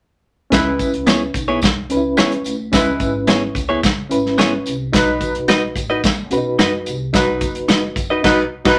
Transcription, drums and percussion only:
0.52 kick loud
0.52 snare loud
0.52 closed hi-hat medium
0.52 tambourine medium
0.79 kick medium
0.79 closed hi-hat medium
0.79 tambourine medium
0.94 closed hi-hat soft
1.07 snare loud
1.07 closed hi-hat medium
1.07 tambourine medium
1.34 kick medium
1.34 closed hi-hat medium
1.34 tambourine medium
1.62 kick medium
1.62 snare loud
1.62 closed hi-hat medium
1.62 tambourine medium
1.90 closed hi-hat medium
1.90 tambourine soft
2.17 snare loud
2.17 closed hi-hat medium
2.17 tambourine medium
2.32 closed hi-hat soft
2.44 closed hi-hat medium
2.44 tambourine soft
2.73 kick loud
2.73 snare loud
2.73 closed hi-hat medium
2.73 tambourine medium
3.00 kick medium
3.00 closed hi-hat medium
3.00 tambourine medium
3.27 snare loud
3.27 closed hi-hat medium
3.27 tambourine medium
3.55 kick medium
3.55 closed hi-hat medium
3.55 tambourine medium
3.83 kick loud
3.83 snare loud
3.83 closed hi-hat medium
3.83 tambourine medium
4.11 closed hi-hat medium
4.11 tambourine medium
4.26 snare soft
4.38 snare loud
4.38 closed hi-hat medium
4.38 tambourine medium
4.66 closed hi-hat medium
4.66 tambourine soft
4.93 kick loud
4.93 snare loud
4.93 closed hi-hat medium
4.93 tambourine medium
5.21 kick medium
5.21 closed hi-hat medium
5.21 tambourine medium
5.35 closed hi-hat medium
5.48 snare loud
5.48 closed hi-hat medium
5.48 tambourine medium
5.76 kick medium
5.76 closed hi-hat medium
5.76 tambourine medium
6.04 kick medium
6.04 snare loud
6.04 closed hi-hat medium
6.04 tambourine medium
6.31 closed hi-hat medium
6.31 tambourine medium
6.59 snare loud
6.59 closed hi-hat medium
6.59 tambourine medium
6.86 closed hi-hat medium
6.86 tambourine soft
7.14 kick medium
7.14 snare loud
7.14 closed hi-hat medium
7.14 tambourine medium
7.41 kick medium
7.41 closed hi-hat medium
7.41 tambourine medium
7.55 closed hi-hat soft
7.69 snare loud
7.69 closed hi-hat medium
7.69 tambourine medium
7.96 kick medium
7.96 closed hi-hat medium
7.96 tambourine medium
8.24 kick loud
8.24 snare loud
8.24 crash medium
8.65 kick loud
8.65 snare medium
8.65 crash medium

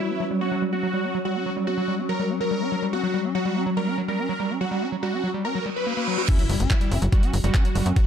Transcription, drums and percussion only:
6.29 kick loud
6.29 closed hi-hat medium
6.29 crash loud
6.39 closed hi-hat medium
6.50 open hi-hat loud
6.60 closed hi-hat medium
6.71 kick loud
6.71 clap loud
6.71 closed hi-hat medium
6.81 closed hi-hat medium
6.92 open hi-hat medium
7.02 closed hi-hat medium
7.12 kick loud
7.12 closed hi-hat medium
7.23 closed hi-hat medium
7.33 open hi-hat loud
7.44 closed hi-hat medium
7.54 kick loud
7.54 clap loud
7.54 closed hi-hat medium
7.65 closed hi-hat medium
7.75 open hi-hat loud
7.86 closed hi-hat medium
7.96 kick loud
7.96 closed hi-hat medium

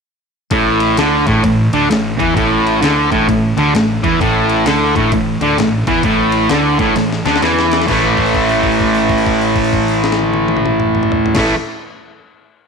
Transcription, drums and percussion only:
0.51 kick loud
0.51 ride medium
0.80 ride medium
0.97 snare loud
0.97 ride loud
1.27 kick loud
1.27 snare soft
1.27 ride medium
1.44 kick medium
1.44 ride medium
1.73 ride medium
1.91 snare loud
1.91 ride loud
2.19 kick loud
2.19 ride medium
2.37 kick loud
2.37 ride medium
2.67 ride medium
2.83 snare loud
2.83 ride loud
3.12 kick loud
3.12 ride medium
3.29 kick medium
3.29 ride medium
3.58 ride medium
3.75 snare loud
3.75 ride medium
4.04 kick loud
4.04 ride medium
4.21 kick loud
4.21 ride medium
4.50 ride medium
4.66 snare loud
4.66 ride loud
4.95 kick loud
4.95 ride medium
5.12 kick medium
5.12 ride medium
5.41 ride medium
5.58 snare loud
5.58 ride medium
5.87 kick loud
5.87 ride medium
6.03 kick medium
6.03 ride medium
6.32 ride medium
6.50 snare loud
6.50 ride loud
6.79 kick loud
6.79 snare soft
6.79 ride medium
6.96 snare medium
6.96 ride medium
7.13 snare medium
7.26 snare medium
7.26 ride medium
7.36 snare medium
7.42 snare medium
7.42 ride medium
7.59 snare medium
7.72 snare loud
7.72 ride medium
7.82 snare medium
7.88 kick medium
7.88 crash medium
8.17 kick medium
8.17 crash soft
8.26 crash soft
8.34 kick medium
8.34 crash soft
8.49 crash soft
8.63 kick medium
8.63 crash soft
8.72 crash soft
8.80 kick medium
8.80 crash soft
8.95 crash soft
9.09 kick medium
9.09 crash soft
9.18 crash soft
9.26 kick medium
9.26 crash medium
9.41 crash soft
9.56 kick medium
9.56 crash medium
9.64 crash medium
9.73 kick medium
9.73 crash medium
9.88 crash soft
10.04 snare medium
10.12 snare medium
10.19 high tom medium
10.34 high tom loud
10.48 high tom medium
10.57 mid tom medium
10.66 mid tom loud
10.80 mid tom medium
10.95 mid tom medium
11.03 mid tom loud
11.12 floor tom loud
11.26 floor tom loud
11.35 kick loud
11.35 snare medium
11.35 crash loud

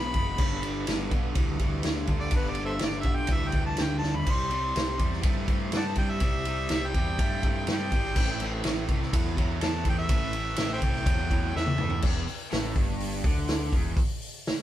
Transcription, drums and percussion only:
0.14 kick medium
0.14 ride medium
0.38 kick loud
0.38 crash medium
0.63 ride medium
0.87 snare loud
0.87 ride loud
1.11 kick medium
1.11 ride medium
1.35 kick loud
1.35 ride loud
1.59 kick medium
1.59 ride medium
1.83 snare loud
1.83 ride medium
2.07 kick medium
2.07 ride medium
2.31 kick loud
2.31 ride loud
2.55 ride medium
2.79 snare loud
2.79 ride loud
3.03 kick medium
3.03 ride medium
3.27 kick loud
3.27 ride loud
3.52 kick medium
3.52 ride medium
3.77 snare loud
3.77 ride medium
4.03 snare medium
4.14 floor tom medium
4.26 kick loud
4.26 crash medium
4.51 ride medium
4.76 snare loud
4.76 ride medium
4.99 kick medium
4.99 ride medium
5.13 snare soft
5.23 kick loud
5.23 ride loud
5.48 kick medium
5.48 ride medium
5.72 snare loud
5.72 ride loud
5.95 kick medium
5.95 ride medium
6.20 kick loud
6.20 ride medium
6.45 ride medium
6.69 snare loud
6.69 ride loud
6.94 kick medium
6.94 ride medium
7.19 kick loud
7.19 ride loud
7.43 kick medium
7.43 ride medium
7.67 snare loud
7.67 ride medium
7.92 kick medium
7.92 ride medium
8.05 snare soft
8.16 kick loud
8.16 crash loud
8.40 ride medium
8.64 snare loud
8.64 ride loud
8.88 kick medium
8.88 ride medium
9.03 snare soft
9.13 kick loud
9.13 ride loud
9.37 kick medium
9.37 ride medium
9.61 snare loud
9.61 ride loud
9.85 kick medium
9.85 ride medium
10.09 kick loud
10.09 ride loud
10.33 ride medium
10.56 snare loud
10.56 ride loud
10.82 kick medium
10.82 ride medium
10.95 snare soft
11.06 kick loud
11.06 ride loud
11.31 kick medium
11.31 ride medium
11.56 snare medium
11.67 high tom medium
11.78 mid tom loud
11.90 floor tom medium
12.02 kick loud
12.02 crash loud
12.28 open hi-hat medium
12.51 snare loud
12.51 open hi-hat medium
12.76 kick loud
12.76 open hi-hat medium
13.00 open hi-hat loud
13.24 kick loud
13.24 open hi-hat medium
13.47 snare loud
13.47 open hi-hat medium
13.72 kick loud
13.72 open hi-hat medium
13.97 kick loud
13.97 open hi-hat medium
14.21 open hi-hat medium
14.46 snare loud
14.46 open hi-hat medium

